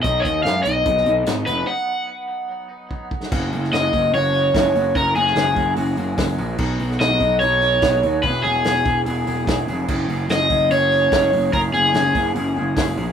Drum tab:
CC |----------------|----------------|x---------------|----------------|
HH |x-x-x-x-x-x-x-x-|----------------|--o-o-o-o-o-o-o-|o-o-o-o-o-o-o-o-|
SD |----o----o--o---|---------------o|---oo-------o---|---oo-------o---|
BD |o-o-----o-------|------------o-o-|o-----o-----o---|o-----o-----o---|

CC |x---------------|----------------|x---------------|----------------|
HH |--o-o-o-o-o-o-o-|o-o-o-o-o-o-o-o-|--o-o-o-o-o-o-o-|o-o-o-o-o-o-o-o-|
SD |---oo-------o---|----o-------o---|----o-------o---|---oo-------o---|
BD |o-----o-----o---|o-----o-----o---|o-----o-----o---|o-----o-----o---|